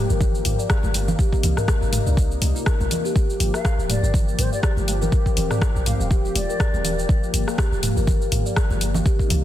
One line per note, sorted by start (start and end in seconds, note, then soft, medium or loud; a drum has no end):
0.00 1.15 F3 medium
0.00 5.09 A#3 medium
0.00 1.15 G4 medium
0.10 0.41 G1 medium
0.10 0.19 A#4 loud
0.10 shaker soft
0.21 kick loud
0.21 low conga loud
0.21 shaker medium
0.35 shaker soft
0.45 0.55 G1 loud
0.45 0.58 F5 medium
0.45 mid tom medium
0.45 open hi-hat medium
0.45 shaker medium
0.59 0.65 D5 medium
0.59 shaker soft
0.70 kick loud
0.70 cross-stick loud
0.70 shaker medium
0.83 1.14 G1 loud
0.83 high conga medium
0.83 shaker soft
0.94 open hi-hat medium
0.94 high conga medium
0.94 shaker loud
1.08 1.18 F5 medium
1.08 low conga loud
1.08 shaker soft
1.18 3.14 C3 medium
1.18 3.14 D#4 medium
1.18 1.31 G4 loud
1.18 kick loud
1.18 high conga medium
1.18 shaker medium
1.33 1.43 G4 medium
1.33 kick medium
1.33 shaker soft
1.43 1.54 C2 loud
1.43 1.56 F5 medium
1.43 open hi-hat medium
1.43 low conga medium
1.43 shaker loud
1.57 1.67 A#4 loud
1.57 cross-stick medium
1.57 mid tom medium
1.57 shaker soft
1.68 kick loud
1.68 cross-stick loud
1.68 high conga medium
1.68 shaker medium
1.81 1.99 G1 loud
1.81 shaker soft
1.93 2.05 F5 medium
1.93 mid tom medium
1.93 open hi-hat medium
1.93 high conga loud
1.93 shaker loud
2.06 2.37 C2 medium
2.06 2.12 D5 medium
2.06 shaker soft
2.17 kick loud
2.17 high conga medium
2.17 shaker medium
2.31 shaker soft
2.42 2.52 C2 medium
2.42 open hi-hat medium
2.42 high conga loud
2.42 shaker medium
2.55 2.61 F4 medium
2.55 shaker soft
2.66 2.79 A#4 medium
2.66 kick loud
2.66 cross-stick loud
2.66 shaker medium
2.80 2.88 A#1 medium
2.80 2.90 F4 medium
2.80 high conga loud
2.80 shaker soft
2.91 2.98 A#4 medium
2.91 open hi-hat medium
2.91 low conga medium
2.91 shaker loud
3.05 3.15 G4 loud
3.05 shaker soft
3.16 9.02 F3 medium
3.16 3.28 G4 loud
3.16 9.02 G4 medium
3.16 kick loud
3.16 high conga medium
3.16 shaker soft
3.29 3.40 G4 medium
3.29 shaker soft
3.40 3.50 G1 loud
3.40 3.53 F5 medium
3.40 open hi-hat medium
3.40 shaker medium
3.54 3.64 A#4 loud
3.54 3.74 F5 medium
3.54 cross-stick medium
3.54 shaker soft
3.65 kick loud
3.65 cross-stick loud
3.65 high conga medium
3.65 shaker medium
3.78 3.96 D1 loud
3.78 shaker soft
3.89 4.10 D5 medium
3.89 4.02 F5 medium
3.89 mid tom loud
3.89 open hi-hat medium
3.89 high conga loud
3.89 shaker loud
4.03 4.34 G1 medium
4.03 4.09 D5 medium
4.03 shaker soft
4.14 kick loud
4.14 low conga medium
4.14 shaker medium
4.28 shaker soft
4.38 4.49 G1 loud
4.38 4.49 C5 medium
4.38 mid tom medium
4.38 open hi-hat medium
4.38 shaker medium
4.52 4.59 D5 medium
4.52 4.62 F5 medium
4.52 shaker soft
4.63 4.76 G4 loud
4.63 4.72 D5 medium
4.63 kick loud
4.63 cross-stick loud
4.63 shaker medium
4.77 5.08 G1 loud
4.77 4.87 G4 medium
4.77 high conga medium
4.77 shaker soft
4.88 5.00 F5 medium
4.88 open hi-hat medium
4.88 high conga medium
4.88 shaker medium
5.01 5.11 A#4 loud
5.01 low conga medium
5.01 shaker soft
5.12 7.07 C4 medium
5.12 kick loud
5.12 shaker soft
5.26 kick medium
5.26 shaker soft
5.37 5.47 D#1 loud
5.37 5.49 F5 medium
5.37 open hi-hat medium
5.37 low conga medium
5.37 shaker medium
5.51 5.56 D5 medium
5.51 cross-stick medium
5.51 mid tom medium
5.51 shaker soft
5.62 kick loud
5.62 cross-stick loud
5.62 high conga medium
5.62 shaker medium
5.75 5.93 A#1 loud
5.75 shaker soft
5.86 5.95 F5 medium
5.86 mid tom loud
5.86 open hi-hat medium
5.86 high conga loud
5.86 shaker loud
6.00 6.31 D#1 medium
6.00 6.07 F5 medium
6.00 6.10 F5 medium
6.00 shaker soft
6.11 6.23 G4 loud
6.11 kick loud
6.11 high conga medium
6.11 shaker medium
6.25 6.35 G4 medium
6.25 shaker soft
6.35 6.45 D#1 loud
6.35 7.05 D5 loud
6.35 6.48 F5 medium
6.35 open hi-hat medium
6.35 high conga medium
6.35 shaker medium
6.49 6.59 A#4 loud
6.49 shaker soft
6.60 kick loud
6.60 cross-stick loud
6.60 shaker medium
6.73 7.04 D#1 loud
6.73 high conga medium
6.73 shaker soft
6.85 6.97 F5 medium
6.85 open hi-hat medium
6.85 low conga medium
6.85 shaker medium
6.98 7.04 D5 medium
6.98 shaker soft
7.09 9.04 A#3 medium
7.09 kick loud
7.09 high conga medium
7.09 shaker soft
7.23 shaker soft
7.33 7.44 G1 loud
7.33 open hi-hat medium
7.33 shaker medium
7.47 7.57 F5 medium
7.47 cross-stick medium
7.47 shaker soft
7.58 7.71 G4 loud
7.58 kick loud
7.58 cross-stick loud
7.58 high conga medium
7.58 shaker medium
7.72 7.89 D1 loud
7.72 7.82 G4 medium
7.72 shaker soft
7.83 7.95 F5 medium
7.83 mid tom loud
7.83 open hi-hat medium
7.83 high conga loud
7.83 shaker loud
7.97 8.27 G1 medium
7.97 8.06 A#4 medium
7.97 shaker soft
8.07 kick loud
8.07 low conga medium
8.07 shaker medium
8.22 shaker soft
8.32 8.42 G1 loud
8.32 8.44 F5 medium
8.32 mid tom loud
8.32 open hi-hat medium
8.32 shaker medium
8.46 8.52 D5 medium
8.46 shaker soft
8.56 kick loud
8.56 cross-stick loud
8.56 shaker medium
8.70 9.01 G1 loud
8.70 high conga medium
8.70 shaker soft
8.81 open hi-hat medium
8.81 high conga medium
8.81 shaker medium
8.94 9.05 F5 medium
8.94 low conga loud
8.94 shaker soft
9.06 9.44 C3 medium
9.06 9.44 A#3 medium
9.06 9.44 D#4 medium
9.06 9.18 G4 loud
9.06 kick loud
9.06 high conga medium
9.06 shaker medium
9.19 9.30 G4 medium
9.19 kick medium
9.19 shaker soft
9.30 9.40 C2 loud
9.30 9.43 F5 medium
9.30 open hi-hat loud
9.30 low conga medium
9.30 shaker medium